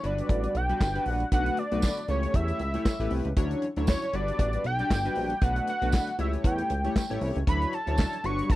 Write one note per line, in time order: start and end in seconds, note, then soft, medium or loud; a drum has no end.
0.03 0.22 G1 medium
0.03 0.55 G3 medium
0.03 0.55 D4 medium
0.03 0.55 F#4 medium
0.03 0.55 B4 medium
0.03 0.56 D5 loud
0.03 closed hi-hat medium
0.18 closed hi-hat medium
0.29 0.47 A1 loud
0.29 kick loud
0.29 closed hi-hat medium
0.44 closed hi-hat medium
0.55 0.73 B1 medium
0.55 1.07 G5 loud
0.55 closed hi-hat medium
0.69 0.87 G3 medium
0.69 0.87 D4 medium
0.69 0.88 F#4 medium
0.69 0.88 B4 medium
0.69 closed hi-hat soft
0.81 0.99 G1 loud
0.81 kick loud
0.81 snare loud
0.81 clap medium
0.81 tambourine medium
0.95 1.23 G3 medium
0.95 1.23 D4 medium
0.95 1.23 F#4 medium
0.95 1.23 B4 medium
0.95 closed hi-hat medium
1.06 1.24 A#1 loud
1.06 1.29 F#5 loud
1.06 open hi-hat medium
1.20 closed hi-hat medium
1.32 1.50 B1 loud
1.32 1.61 A3 medium
1.32 1.61 D4 medium
1.32 1.61 F#4 medium
1.32 1.61 B4 medium
1.32 1.60 F#5 loud
1.32 kick loud
1.32 closed hi-hat medium
1.46 closed hi-hat medium
1.57 2.09 D5 loud
1.57 closed hi-hat medium
1.71 1.90 B1 medium
1.71 2.00 A3 medium
1.71 2.00 D4 medium
1.71 2.00 F#4 medium
1.71 2.00 B4 medium
1.71 closed hi-hat soft
1.82 kick medium
1.82 snare medium
1.82 clap medium
1.82 tambourine loud
1.97 closed hi-hat soft
2.08 2.27 C#2 medium
2.08 2.60 A3 medium
2.08 2.60 E4 medium
2.08 2.60 G4 medium
2.08 2.60 C#5 medium
2.08 2.37 C#5 medium
2.08 closed hi-hat medium
2.23 closed hi-hat medium
2.34 2.52 E2 loud
2.34 3.12 E5 loud
2.34 kick loud
2.34 closed hi-hat medium
2.48 closed hi-hat medium
2.59 2.78 C#2 medium
2.59 closed hi-hat medium
2.74 2.92 A3 medium
2.74 2.93 E4 medium
2.74 2.93 G4 medium
2.74 2.93 C#5 medium
2.74 closed hi-hat soft
2.85 kick loud
2.85 snare loud
2.85 clap medium
2.85 tambourine medium
3.00 3.08 A1 medium
3.00 3.28 A3 medium
3.00 3.28 E4 medium
3.00 3.28 G4 medium
3.00 3.29 B4 loud
3.00 closed hi-hat medium
3.11 3.21 C2 loud
3.11 open hi-hat medium
3.25 3.33 C#2 medium
3.25 closed hi-hat medium
3.36 3.55 D2 loud
3.36 3.66 F#3 medium
3.36 3.66 D4 medium
3.36 3.66 E4 medium
3.36 3.66 C#5 loud
3.36 kick loud
3.36 closed hi-hat loud
3.51 closed hi-hat medium
3.62 closed hi-hat medium
3.76 3.95 D2 medium
3.76 4.05 F#3 medium
3.76 4.05 D4 medium
3.76 4.05 E4 medium
3.76 4.05 C#5 medium
3.76 closed hi-hat medium
3.87 4.17 C#5 medium
3.87 kick loud
3.87 snare medium
3.87 clap medium
3.87 tambourine medium
4.02 closed hi-hat soft
4.13 4.32 G1 medium
4.13 4.65 G3 medium
4.13 4.65 D4 medium
4.13 4.65 F#4 medium
4.13 4.65 B4 medium
4.13 4.65 D5 loud
4.13 closed hi-hat medium
4.28 closed hi-hat medium
4.39 4.57 A1 loud
4.39 kick loud
4.39 closed hi-hat medium
4.53 closed hi-hat medium
4.64 4.83 B1 medium
4.64 5.45 G5 loud
4.64 closed hi-hat medium
4.79 4.98 G3 medium
4.79 4.98 D4 medium
4.79 4.98 F#4 medium
4.79 4.98 D5 medium
4.79 closed hi-hat soft
4.90 5.09 G1 loud
4.90 kick loud
4.90 snare loud
4.90 clap medium
4.90 tambourine medium
5.05 5.33 G3 medium
5.05 5.33 D4 medium
5.05 5.33 F#4 medium
5.05 5.34 B4 medium
5.05 closed hi-hat medium
5.16 5.34 A#1 loud
5.16 open hi-hat medium
5.30 closed hi-hat medium
5.42 5.60 B1 loud
5.42 5.71 A3 medium
5.42 5.71 D4 medium
5.42 5.71 F#4 medium
5.42 5.71 B4 medium
5.42 5.68 F#5 loud
5.42 kick loud
5.42 closed hi-hat medium
5.56 closed hi-hat medium
5.67 6.16 F#5 loud
5.67 closed hi-hat medium
5.81 6.00 B1 medium
5.81 6.10 A3 medium
5.81 6.10 D4 medium
5.81 6.10 F#4 medium
5.81 6.10 B4 medium
5.81 closed hi-hat medium
5.92 kick loud
5.92 snare medium
5.92 clap medium
5.92 tambourine medium
6.07 closed hi-hat medium
6.18 6.37 C#2 medium
6.18 6.70 A3 medium
6.18 6.70 E4 medium
6.18 6.70 G4 medium
6.18 6.70 C#5 medium
6.18 6.32 E5 medium
6.18 closed hi-hat medium
6.33 closed hi-hat medium
6.44 6.63 E2 loud
6.44 7.18 G5 medium
6.44 kick loud
6.44 closed hi-hat medium
6.58 closed hi-hat medium
6.70 6.88 C#2 medium
6.70 closed hi-hat medium
6.84 7.03 A3 medium
6.84 7.03 E4 medium
6.84 7.03 G4 medium
6.84 7.03 C#5 medium
6.84 closed hi-hat soft
6.96 kick loud
6.96 snare loud
6.96 clap medium
6.96 tambourine medium
7.10 7.18 A1 medium
7.10 7.38 A3 medium
7.10 7.38 E4 medium
7.10 7.39 G4 medium
7.10 7.39 C#5 loud
7.10 closed hi-hat medium
7.21 7.32 C2 loud
7.21 open hi-hat medium
7.36 7.44 C#2 medium
7.36 closed hi-hat medium
7.47 7.65 D2 loud
7.47 7.76 F#3 medium
7.47 7.76 D4 medium
7.47 7.76 E4 medium
7.47 7.76 C#5 medium
7.47 7.75 B5 loud
7.47 kick loud
7.47 closed hi-hat loud
7.62 closed hi-hat medium
7.73 8.27 A5 loud
7.73 closed hi-hat medium
7.86 8.05 D2 medium
7.86 8.15 F#3 medium
7.86 8.15 D4 medium
7.86 8.15 E4 medium
7.86 8.15 C#5 medium
7.86 closed hi-hat soft
7.98 kick loud
7.98 snare medium
7.98 clap medium
7.98 tambourine medium
8.13 closed hi-hat medium
8.23 8.42 G1 loud
8.23 8.56 G3 medium
8.23 8.56 D4 medium
8.23 8.56 F#4 medium
8.23 8.56 B4 medium
8.23 8.50 C#6 loud
8.23 closed hi-hat medium
8.39 closed hi-hat medium
8.50 8.56 A1 loud
8.50 8.56 B5 loud
8.50 kick loud
8.50 closed hi-hat medium